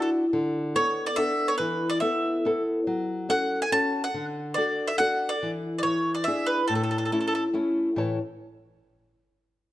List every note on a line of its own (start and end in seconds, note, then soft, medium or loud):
0.00 0.24 D4 soft
0.00 0.24 E4 soft
0.00 0.25 F#4 medium
0.00 0.09 A4 medium
0.33 0.74 D3 medium
0.75 1.09 B3 soft
0.75 1.09 D4 soft
0.75 1.10 A4 medium
0.75 1.06 C#5 medium
1.06 1.16 D5 medium
1.16 1.52 B3 medium
1.16 1.52 D4 soft
1.16 1.52 A4 medium
1.16 1.47 E5 medium
1.48 1.57 C#5 medium
1.58 2.01 E3 medium
1.58 1.89 B4 medium
1.90 2.00 D5 medium
2.00 2.36 B3 soft
2.00 2.36 E4 soft
2.00 2.36 A4 soft
2.00 2.62 E5 medium
2.45 2.79 B3 medium
2.45 2.79 E4 soft
2.45 2.80 A4 medium
2.87 3.29 F#3 medium
3.29 3.64 C#4 soft
3.29 3.64 F#4 soft
3.29 3.64 A4 medium
3.29 3.60 F#5 medium
3.62 3.72 G#5 medium
3.72 4.07 C#4 medium
3.72 4.07 F#4 soft
3.72 4.07 A4 medium
3.72 4.03 A5 loud
4.04 4.24 F#5 medium
4.14 4.56 D3 medium
4.54 4.92 D4 medium
4.54 4.92 F#4 soft
4.54 4.92 A4 medium
4.54 4.86 D5 medium
4.87 4.98 E5 medium
4.98 5.34 D4 medium
4.98 5.34 F#4 medium
4.98 5.34 A4 medium
4.98 5.29 F#5 medium
5.29 5.50 D5 medium
5.43 5.83 E3 medium
5.79 5.82 D5 medium
5.83 6.26 E3 medium
5.83 6.14 C#5 medium
6.15 6.25 D5 medium
6.24 6.61 D4 medium
6.24 6.61 E4 soft
6.24 6.46 E5 medium
6.28 6.62 G#4 medium
6.46 6.67 B4 medium
6.68 7.11 A2 medium
6.68 6.74 A4 medium
6.75 6.82 A4 soft
6.83 6.90 A4 medium
6.91 6.97 A4 medium
6.98 7.04 A4 medium
7.05 7.11 A4 soft
7.12 7.46 A3 medium
7.12 7.46 C#4 soft
7.12 7.47 E4 soft
7.12 7.19 A4 soft
7.21 7.26 A4 soft
7.27 7.34 A4 medium
7.54 7.88 A3 medium
7.54 7.88 C#4 soft
7.54 7.89 E4 medium
7.96 8.17 A2 medium
7.96 8.18 E3 soft
7.96 8.18 A3 soft
7.96 8.18 E4 soft
7.96 8.18 C#5 soft
7.96 8.18 A5 medium